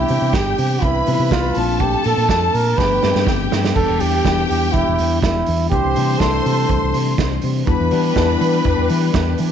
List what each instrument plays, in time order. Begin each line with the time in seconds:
Already playing: tine electric piano E3 G3 B3 D4, flugelhorn E4, string section G4 G5
0.08 fingered electric bass C3, open hi-hat
0.22 fingered electric bass C3
0.33 fingered electric bass G1, flugelhorn G4, kick, snare, closed hi-hat
0.58 fingered electric bass C3, open hi-hat
0.82 fingered electric bass C2, flugelhorn E4, string section B4 B5, kick, closed hi-hat
1.06 fingered electric bass C3, tine electric piano E3 G3 B3 D#4, open hi-hat
1.14 tine electric piano E4
1.19 fingered electric bass C3
1.31 fingered electric bass C2, flugelhorn F4, kick, snare, closed hi-hat
1.54 fingered electric bass A#1, tine electric piano F3 A3 C4 D4, string section A4 A5, open hi-hat
1.80 flugelhorn G4, kick, closed hi-hat
2.04 fingered electric bass A#2, flugelhorn A4, open hi-hat
2.17 fingered electric bass A#2
2.29 fingered electric bass F2, kick, snare, closed hi-hat
2.54 fingered electric bass A#2, flugelhorn A#4, open hi-hat
2.77 fingered electric bass G1, tine electric piano F3 A3 B3 D4, string section G4 G5, flugelhorn B4, kick, snare
3.02 fingered electric bass G2, tine electric piano F3 A3 B3 C4, snare
3.09 tine electric piano D4
3.15 fingered electric bass G2, snare
3.27 fingered electric bass G1, kick, snare
3.52 fingered electric bass G2, snare
3.65 snare
3.75 fingered electric bass E1, tine electric piano E3 G3 B3 D4, string section G4 G5, flugelhorn A4, kick, crash
3.89 fingered electric bass E1
4.00 fingered electric bass E2, tine electric piano E3 G3 B3 D4, flugelhorn G4, open hi-hat
4.24 fingered electric bass E1, tine electric piano E3 G3 B3 D4, kick, snare, closed hi-hat
4.49 fingered electric bass E2, flugelhorn G4, open hi-hat
4.72 fingered electric bass E1, flugelhorn E4, kick, closed hi-hat
4.87 fingered electric bass E1
4.98 fingered electric bass E2, open hi-hat
5.22 fingered electric bass E1, flugelhorn E4, kick, snare, closed hi-hat
5.46 fingered electric bass E2, open hi-hat
5.70 fingered electric bass C2, tine electric piano E3 G3 A3 D4, flugelhorn G4, string section C5 C6, kick, closed hi-hat
5.85 fingered electric bass C2
5.95 fingered electric bass C3, tine electric piano E3 G3 A3 D4, open hi-hat
6.19 fingered electric bass C2, tine electric piano E3 G3 A3 D4, flugelhorn A4, kick, snare, closed hi-hat
6.46 fingered electric bass C3, open hi-hat
6.69 fingered electric bass C2, kick, closed hi-hat
6.82 fingered electric bass C2
6.94 fingered electric bass C3, open hi-hat
7.18 fingered electric bass C2, kick, snare, closed hi-hat
7.42 fingered electric bass C3, open hi-hat
7.67 fingered electric bass E2, tine electric piano E3 G3 B3 D4, string section E3 D4 G4 B4 B5, kick, closed hi-hat
7.80 fingered electric bass E2
7.91 tine electric piano E3 G3 B3 D4, fingered electric bass E3, open hi-hat
8.16 fingered electric bass E2, tine electric piano E3 G3 B3 D4, kick, snare, closed hi-hat
8.41 fingered electric bass E3, open hi-hat
8.65 fingered electric bass E2, kick, closed hi-hat
8.78 fingered electric bass E2
8.89 fingered electric bass E3, open hi-hat
9.14 fingered electric bass E2, kick, snare, closed hi-hat
9.38 fingered electric bass E3, open hi-hat